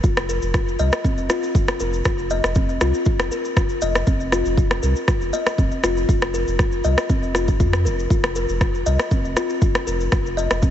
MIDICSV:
0, 0, Header, 1, 4, 480
1, 0, Start_track
1, 0, Tempo, 504202
1, 37, Time_signature, 4, 2, 24, 8
1, 10190, End_track
2, 0, Start_track
2, 0, Title_t, "Kalimba"
2, 0, Program_c, 0, 108
2, 37, Note_on_c, 0, 65, 76
2, 106, Note_off_c, 0, 65, 0
2, 277, Note_on_c, 0, 70, 71
2, 398, Note_off_c, 0, 70, 0
2, 515, Note_on_c, 0, 65, 76
2, 631, Note_off_c, 0, 65, 0
2, 756, Note_on_c, 0, 75, 97
2, 871, Note_off_c, 0, 75, 0
2, 995, Note_on_c, 0, 60, 74
2, 1065, Note_off_c, 0, 60, 0
2, 1236, Note_on_c, 0, 65, 94
2, 1351, Note_off_c, 0, 65, 0
2, 1477, Note_on_c, 0, 65, 75
2, 1546, Note_off_c, 0, 65, 0
2, 1717, Note_on_c, 0, 70, 71
2, 1838, Note_off_c, 0, 70, 0
2, 1957, Note_on_c, 0, 65, 77
2, 2072, Note_off_c, 0, 65, 0
2, 2196, Note_on_c, 0, 75, 98
2, 2311, Note_off_c, 0, 75, 0
2, 2437, Note_on_c, 0, 60, 75
2, 2506, Note_off_c, 0, 60, 0
2, 2676, Note_on_c, 0, 65, 98
2, 2791, Note_off_c, 0, 65, 0
2, 2917, Note_on_c, 0, 65, 77
2, 2986, Note_off_c, 0, 65, 0
2, 3156, Note_on_c, 0, 70, 72
2, 3278, Note_off_c, 0, 70, 0
2, 3396, Note_on_c, 0, 65, 79
2, 3511, Note_off_c, 0, 65, 0
2, 3636, Note_on_c, 0, 75, 97
2, 3751, Note_off_c, 0, 75, 0
2, 3875, Note_on_c, 0, 60, 81
2, 3945, Note_off_c, 0, 60, 0
2, 4115, Note_on_c, 0, 65, 96
2, 4231, Note_off_c, 0, 65, 0
2, 4356, Note_on_c, 0, 65, 77
2, 4425, Note_off_c, 0, 65, 0
2, 4595, Note_on_c, 0, 70, 70
2, 4717, Note_off_c, 0, 70, 0
2, 4836, Note_on_c, 0, 65, 79
2, 4951, Note_off_c, 0, 65, 0
2, 5075, Note_on_c, 0, 75, 95
2, 5191, Note_off_c, 0, 75, 0
2, 5316, Note_on_c, 0, 60, 75
2, 5385, Note_off_c, 0, 60, 0
2, 5557, Note_on_c, 0, 65, 98
2, 5672, Note_off_c, 0, 65, 0
2, 5797, Note_on_c, 0, 65, 79
2, 5866, Note_off_c, 0, 65, 0
2, 6037, Note_on_c, 0, 70, 70
2, 6158, Note_off_c, 0, 70, 0
2, 6276, Note_on_c, 0, 65, 77
2, 6391, Note_off_c, 0, 65, 0
2, 6516, Note_on_c, 0, 75, 94
2, 6631, Note_off_c, 0, 75, 0
2, 6755, Note_on_c, 0, 60, 78
2, 6825, Note_off_c, 0, 60, 0
2, 6995, Note_on_c, 0, 65, 94
2, 7111, Note_off_c, 0, 65, 0
2, 7234, Note_on_c, 0, 65, 76
2, 7305, Note_off_c, 0, 65, 0
2, 7475, Note_on_c, 0, 70, 71
2, 7597, Note_off_c, 0, 70, 0
2, 7715, Note_on_c, 0, 65, 79
2, 7785, Note_off_c, 0, 65, 0
2, 7957, Note_on_c, 0, 70, 71
2, 8078, Note_off_c, 0, 70, 0
2, 8198, Note_on_c, 0, 65, 75
2, 8312, Note_off_c, 0, 65, 0
2, 8437, Note_on_c, 0, 75, 94
2, 8552, Note_off_c, 0, 75, 0
2, 8677, Note_on_c, 0, 60, 75
2, 8746, Note_off_c, 0, 60, 0
2, 8916, Note_on_c, 0, 65, 92
2, 9031, Note_off_c, 0, 65, 0
2, 9157, Note_on_c, 0, 65, 79
2, 9226, Note_off_c, 0, 65, 0
2, 9396, Note_on_c, 0, 70, 72
2, 9518, Note_off_c, 0, 70, 0
2, 9874, Note_on_c, 0, 75, 98
2, 9990, Note_off_c, 0, 75, 0
2, 10116, Note_on_c, 0, 60, 78
2, 10185, Note_off_c, 0, 60, 0
2, 10190, End_track
3, 0, Start_track
3, 0, Title_t, "Sub bass"
3, 0, Program_c, 1, 38
3, 35, Note_on_c, 1, 29, 102
3, 369, Note_off_c, 1, 29, 0
3, 403, Note_on_c, 1, 29, 85
3, 726, Note_off_c, 1, 29, 0
3, 754, Note_on_c, 1, 36, 79
3, 862, Note_off_c, 1, 36, 0
3, 1122, Note_on_c, 1, 29, 90
3, 1217, Note_off_c, 1, 29, 0
3, 1475, Note_on_c, 1, 29, 96
3, 1582, Note_off_c, 1, 29, 0
3, 1716, Note_on_c, 1, 29, 80
3, 1919, Note_off_c, 1, 29, 0
3, 1955, Note_on_c, 1, 29, 100
3, 2289, Note_off_c, 1, 29, 0
3, 2323, Note_on_c, 1, 29, 81
3, 2646, Note_off_c, 1, 29, 0
3, 2676, Note_on_c, 1, 36, 80
3, 2783, Note_off_c, 1, 36, 0
3, 3042, Note_on_c, 1, 29, 89
3, 3137, Note_off_c, 1, 29, 0
3, 3395, Note_on_c, 1, 29, 100
3, 3502, Note_off_c, 1, 29, 0
3, 3636, Note_on_c, 1, 29, 78
3, 3838, Note_off_c, 1, 29, 0
3, 3875, Note_on_c, 1, 29, 96
3, 4209, Note_off_c, 1, 29, 0
3, 4243, Note_on_c, 1, 29, 86
3, 4566, Note_off_c, 1, 29, 0
3, 4597, Note_on_c, 1, 36, 81
3, 4703, Note_off_c, 1, 36, 0
3, 4963, Note_on_c, 1, 29, 93
3, 5058, Note_off_c, 1, 29, 0
3, 5316, Note_on_c, 1, 29, 98
3, 5423, Note_off_c, 1, 29, 0
3, 5557, Note_on_c, 1, 29, 77
3, 5759, Note_off_c, 1, 29, 0
3, 5796, Note_on_c, 1, 29, 102
3, 6129, Note_off_c, 1, 29, 0
3, 6165, Note_on_c, 1, 29, 86
3, 6487, Note_off_c, 1, 29, 0
3, 6516, Note_on_c, 1, 36, 78
3, 6622, Note_off_c, 1, 36, 0
3, 6883, Note_on_c, 1, 29, 98
3, 7235, Note_on_c, 1, 41, 83
3, 7250, Note_off_c, 1, 29, 0
3, 7476, Note_on_c, 1, 29, 82
3, 7491, Note_off_c, 1, 41, 0
3, 7679, Note_off_c, 1, 29, 0
3, 7715, Note_on_c, 1, 29, 98
3, 8049, Note_off_c, 1, 29, 0
3, 8084, Note_on_c, 1, 29, 85
3, 8406, Note_off_c, 1, 29, 0
3, 8437, Note_on_c, 1, 36, 82
3, 8543, Note_off_c, 1, 36, 0
3, 8805, Note_on_c, 1, 29, 93
3, 8898, Note_off_c, 1, 29, 0
3, 9156, Note_on_c, 1, 29, 101
3, 9262, Note_off_c, 1, 29, 0
3, 9397, Note_on_c, 1, 29, 78
3, 9599, Note_off_c, 1, 29, 0
3, 9636, Note_on_c, 1, 29, 103
3, 9970, Note_off_c, 1, 29, 0
3, 10005, Note_on_c, 1, 29, 85
3, 10190, Note_off_c, 1, 29, 0
3, 10190, End_track
4, 0, Start_track
4, 0, Title_t, "Drums"
4, 33, Note_on_c, 9, 69, 45
4, 35, Note_on_c, 9, 36, 108
4, 128, Note_off_c, 9, 69, 0
4, 130, Note_off_c, 9, 36, 0
4, 163, Note_on_c, 9, 69, 25
4, 164, Note_on_c, 9, 37, 82
4, 258, Note_off_c, 9, 69, 0
4, 259, Note_off_c, 9, 37, 0
4, 279, Note_on_c, 9, 69, 85
4, 375, Note_off_c, 9, 69, 0
4, 401, Note_on_c, 9, 69, 37
4, 496, Note_off_c, 9, 69, 0
4, 515, Note_on_c, 9, 36, 115
4, 516, Note_on_c, 9, 37, 73
4, 516, Note_on_c, 9, 69, 43
4, 610, Note_off_c, 9, 36, 0
4, 611, Note_off_c, 9, 37, 0
4, 611, Note_off_c, 9, 69, 0
4, 651, Note_on_c, 9, 69, 26
4, 746, Note_off_c, 9, 69, 0
4, 754, Note_on_c, 9, 69, 76
4, 849, Note_off_c, 9, 69, 0
4, 880, Note_on_c, 9, 69, 34
4, 883, Note_on_c, 9, 37, 88
4, 975, Note_off_c, 9, 69, 0
4, 978, Note_off_c, 9, 37, 0
4, 995, Note_on_c, 9, 36, 109
4, 1002, Note_on_c, 9, 69, 47
4, 1090, Note_off_c, 9, 36, 0
4, 1097, Note_off_c, 9, 69, 0
4, 1120, Note_on_c, 9, 69, 25
4, 1216, Note_off_c, 9, 69, 0
4, 1234, Note_on_c, 9, 69, 89
4, 1235, Note_on_c, 9, 37, 71
4, 1329, Note_off_c, 9, 69, 0
4, 1330, Note_off_c, 9, 37, 0
4, 1364, Note_on_c, 9, 69, 37
4, 1459, Note_off_c, 9, 69, 0
4, 1475, Note_on_c, 9, 36, 112
4, 1480, Note_on_c, 9, 69, 49
4, 1570, Note_off_c, 9, 36, 0
4, 1575, Note_off_c, 9, 69, 0
4, 1599, Note_on_c, 9, 69, 24
4, 1603, Note_on_c, 9, 37, 84
4, 1694, Note_off_c, 9, 69, 0
4, 1698, Note_off_c, 9, 37, 0
4, 1712, Note_on_c, 9, 69, 79
4, 1807, Note_off_c, 9, 69, 0
4, 1841, Note_on_c, 9, 69, 36
4, 1936, Note_off_c, 9, 69, 0
4, 1950, Note_on_c, 9, 69, 48
4, 1955, Note_on_c, 9, 36, 100
4, 1955, Note_on_c, 9, 37, 71
4, 2045, Note_off_c, 9, 69, 0
4, 2050, Note_off_c, 9, 36, 0
4, 2050, Note_off_c, 9, 37, 0
4, 2079, Note_on_c, 9, 69, 21
4, 2175, Note_off_c, 9, 69, 0
4, 2192, Note_on_c, 9, 69, 75
4, 2287, Note_off_c, 9, 69, 0
4, 2323, Note_on_c, 9, 37, 81
4, 2330, Note_on_c, 9, 69, 35
4, 2418, Note_off_c, 9, 37, 0
4, 2425, Note_off_c, 9, 69, 0
4, 2427, Note_on_c, 9, 69, 45
4, 2435, Note_on_c, 9, 36, 109
4, 2522, Note_off_c, 9, 69, 0
4, 2530, Note_off_c, 9, 36, 0
4, 2561, Note_on_c, 9, 69, 27
4, 2656, Note_off_c, 9, 69, 0
4, 2674, Note_on_c, 9, 69, 75
4, 2676, Note_on_c, 9, 37, 71
4, 2769, Note_off_c, 9, 69, 0
4, 2771, Note_off_c, 9, 37, 0
4, 2801, Note_on_c, 9, 69, 35
4, 2896, Note_off_c, 9, 69, 0
4, 2908, Note_on_c, 9, 69, 42
4, 2915, Note_on_c, 9, 36, 103
4, 3003, Note_off_c, 9, 69, 0
4, 3010, Note_off_c, 9, 36, 0
4, 3042, Note_on_c, 9, 37, 83
4, 3046, Note_on_c, 9, 69, 25
4, 3138, Note_off_c, 9, 37, 0
4, 3141, Note_off_c, 9, 69, 0
4, 3158, Note_on_c, 9, 69, 92
4, 3253, Note_off_c, 9, 69, 0
4, 3283, Note_on_c, 9, 69, 35
4, 3379, Note_off_c, 9, 69, 0
4, 3395, Note_on_c, 9, 36, 110
4, 3396, Note_on_c, 9, 37, 69
4, 3397, Note_on_c, 9, 69, 44
4, 3490, Note_off_c, 9, 36, 0
4, 3491, Note_off_c, 9, 37, 0
4, 3493, Note_off_c, 9, 69, 0
4, 3516, Note_on_c, 9, 69, 26
4, 3611, Note_off_c, 9, 69, 0
4, 3632, Note_on_c, 9, 69, 79
4, 3727, Note_off_c, 9, 69, 0
4, 3764, Note_on_c, 9, 37, 82
4, 3768, Note_on_c, 9, 69, 33
4, 3860, Note_off_c, 9, 37, 0
4, 3863, Note_off_c, 9, 69, 0
4, 3873, Note_on_c, 9, 69, 51
4, 3875, Note_on_c, 9, 36, 103
4, 3969, Note_off_c, 9, 69, 0
4, 3970, Note_off_c, 9, 36, 0
4, 4002, Note_on_c, 9, 69, 24
4, 4098, Note_off_c, 9, 69, 0
4, 4116, Note_on_c, 9, 37, 68
4, 4120, Note_on_c, 9, 69, 79
4, 4211, Note_off_c, 9, 37, 0
4, 4216, Note_off_c, 9, 69, 0
4, 4241, Note_on_c, 9, 69, 34
4, 4336, Note_off_c, 9, 69, 0
4, 4355, Note_on_c, 9, 36, 107
4, 4362, Note_on_c, 9, 69, 45
4, 4451, Note_off_c, 9, 36, 0
4, 4457, Note_off_c, 9, 69, 0
4, 4483, Note_on_c, 9, 37, 81
4, 4484, Note_on_c, 9, 69, 24
4, 4578, Note_off_c, 9, 37, 0
4, 4579, Note_off_c, 9, 69, 0
4, 4597, Note_on_c, 9, 69, 78
4, 4692, Note_off_c, 9, 69, 0
4, 4723, Note_on_c, 9, 69, 34
4, 4818, Note_off_c, 9, 69, 0
4, 4835, Note_on_c, 9, 36, 107
4, 4835, Note_on_c, 9, 37, 71
4, 4837, Note_on_c, 9, 69, 50
4, 4930, Note_off_c, 9, 37, 0
4, 4931, Note_off_c, 9, 36, 0
4, 4932, Note_off_c, 9, 69, 0
4, 4965, Note_on_c, 9, 69, 22
4, 5060, Note_off_c, 9, 69, 0
4, 5077, Note_on_c, 9, 69, 90
4, 5172, Note_off_c, 9, 69, 0
4, 5203, Note_on_c, 9, 37, 86
4, 5207, Note_on_c, 9, 69, 35
4, 5298, Note_off_c, 9, 37, 0
4, 5302, Note_off_c, 9, 69, 0
4, 5315, Note_on_c, 9, 36, 108
4, 5319, Note_on_c, 9, 69, 49
4, 5411, Note_off_c, 9, 36, 0
4, 5414, Note_off_c, 9, 69, 0
4, 5440, Note_on_c, 9, 69, 21
4, 5535, Note_off_c, 9, 69, 0
4, 5556, Note_on_c, 9, 37, 67
4, 5557, Note_on_c, 9, 69, 78
4, 5651, Note_off_c, 9, 37, 0
4, 5652, Note_off_c, 9, 69, 0
4, 5685, Note_on_c, 9, 69, 34
4, 5780, Note_off_c, 9, 69, 0
4, 5795, Note_on_c, 9, 36, 102
4, 5801, Note_on_c, 9, 69, 50
4, 5891, Note_off_c, 9, 36, 0
4, 5896, Note_off_c, 9, 69, 0
4, 5919, Note_on_c, 9, 69, 22
4, 5924, Note_on_c, 9, 37, 81
4, 6015, Note_off_c, 9, 69, 0
4, 6019, Note_off_c, 9, 37, 0
4, 6038, Note_on_c, 9, 69, 88
4, 6133, Note_off_c, 9, 69, 0
4, 6166, Note_on_c, 9, 69, 34
4, 6261, Note_off_c, 9, 69, 0
4, 6275, Note_on_c, 9, 36, 106
4, 6275, Note_on_c, 9, 37, 73
4, 6281, Note_on_c, 9, 69, 45
4, 6370, Note_off_c, 9, 36, 0
4, 6370, Note_off_c, 9, 37, 0
4, 6377, Note_off_c, 9, 69, 0
4, 6397, Note_on_c, 9, 69, 22
4, 6493, Note_off_c, 9, 69, 0
4, 6513, Note_on_c, 9, 69, 87
4, 6608, Note_off_c, 9, 69, 0
4, 6643, Note_on_c, 9, 37, 85
4, 6643, Note_on_c, 9, 69, 37
4, 6738, Note_off_c, 9, 37, 0
4, 6738, Note_off_c, 9, 69, 0
4, 6754, Note_on_c, 9, 69, 44
4, 6755, Note_on_c, 9, 36, 106
4, 6849, Note_off_c, 9, 69, 0
4, 6850, Note_off_c, 9, 36, 0
4, 6882, Note_on_c, 9, 69, 23
4, 6977, Note_off_c, 9, 69, 0
4, 6995, Note_on_c, 9, 37, 72
4, 7001, Note_on_c, 9, 69, 83
4, 7090, Note_off_c, 9, 37, 0
4, 7096, Note_off_c, 9, 69, 0
4, 7120, Note_on_c, 9, 69, 39
4, 7123, Note_on_c, 9, 36, 76
4, 7215, Note_off_c, 9, 69, 0
4, 7218, Note_off_c, 9, 36, 0
4, 7235, Note_on_c, 9, 36, 111
4, 7236, Note_on_c, 9, 69, 45
4, 7330, Note_off_c, 9, 36, 0
4, 7331, Note_off_c, 9, 69, 0
4, 7362, Note_on_c, 9, 37, 82
4, 7370, Note_on_c, 9, 69, 25
4, 7457, Note_off_c, 9, 37, 0
4, 7465, Note_off_c, 9, 69, 0
4, 7485, Note_on_c, 9, 69, 80
4, 7580, Note_off_c, 9, 69, 0
4, 7611, Note_on_c, 9, 69, 35
4, 7706, Note_off_c, 9, 69, 0
4, 7715, Note_on_c, 9, 36, 109
4, 7719, Note_on_c, 9, 69, 46
4, 7810, Note_off_c, 9, 36, 0
4, 7814, Note_off_c, 9, 69, 0
4, 7842, Note_on_c, 9, 37, 85
4, 7844, Note_on_c, 9, 69, 25
4, 7938, Note_off_c, 9, 37, 0
4, 7939, Note_off_c, 9, 69, 0
4, 7954, Note_on_c, 9, 69, 88
4, 8050, Note_off_c, 9, 69, 0
4, 8083, Note_on_c, 9, 69, 39
4, 8178, Note_off_c, 9, 69, 0
4, 8195, Note_on_c, 9, 36, 115
4, 8196, Note_on_c, 9, 69, 48
4, 8197, Note_on_c, 9, 37, 75
4, 8291, Note_off_c, 9, 36, 0
4, 8291, Note_off_c, 9, 69, 0
4, 8292, Note_off_c, 9, 37, 0
4, 8328, Note_on_c, 9, 69, 23
4, 8423, Note_off_c, 9, 69, 0
4, 8437, Note_on_c, 9, 69, 90
4, 8532, Note_off_c, 9, 69, 0
4, 8563, Note_on_c, 9, 37, 91
4, 8564, Note_on_c, 9, 69, 36
4, 8658, Note_off_c, 9, 37, 0
4, 8659, Note_off_c, 9, 69, 0
4, 8675, Note_on_c, 9, 69, 53
4, 8676, Note_on_c, 9, 36, 112
4, 8770, Note_off_c, 9, 69, 0
4, 8771, Note_off_c, 9, 36, 0
4, 8805, Note_on_c, 9, 69, 24
4, 8901, Note_off_c, 9, 69, 0
4, 8917, Note_on_c, 9, 37, 77
4, 8917, Note_on_c, 9, 69, 92
4, 9012, Note_off_c, 9, 37, 0
4, 9012, Note_off_c, 9, 69, 0
4, 9042, Note_on_c, 9, 69, 40
4, 9137, Note_off_c, 9, 69, 0
4, 9155, Note_on_c, 9, 69, 47
4, 9156, Note_on_c, 9, 36, 118
4, 9250, Note_off_c, 9, 69, 0
4, 9251, Note_off_c, 9, 36, 0
4, 9283, Note_on_c, 9, 37, 83
4, 9284, Note_on_c, 9, 69, 24
4, 9379, Note_off_c, 9, 37, 0
4, 9380, Note_off_c, 9, 69, 0
4, 9399, Note_on_c, 9, 69, 84
4, 9494, Note_off_c, 9, 69, 0
4, 9525, Note_on_c, 9, 69, 34
4, 9620, Note_off_c, 9, 69, 0
4, 9635, Note_on_c, 9, 37, 78
4, 9635, Note_on_c, 9, 69, 45
4, 9636, Note_on_c, 9, 36, 111
4, 9730, Note_off_c, 9, 37, 0
4, 9730, Note_off_c, 9, 69, 0
4, 9731, Note_off_c, 9, 36, 0
4, 9772, Note_on_c, 9, 69, 27
4, 9867, Note_off_c, 9, 69, 0
4, 9884, Note_on_c, 9, 69, 93
4, 9980, Note_off_c, 9, 69, 0
4, 10001, Note_on_c, 9, 69, 37
4, 10003, Note_on_c, 9, 37, 89
4, 10096, Note_off_c, 9, 69, 0
4, 10098, Note_off_c, 9, 37, 0
4, 10113, Note_on_c, 9, 69, 53
4, 10115, Note_on_c, 9, 36, 119
4, 10190, Note_off_c, 9, 36, 0
4, 10190, Note_off_c, 9, 69, 0
4, 10190, End_track
0, 0, End_of_file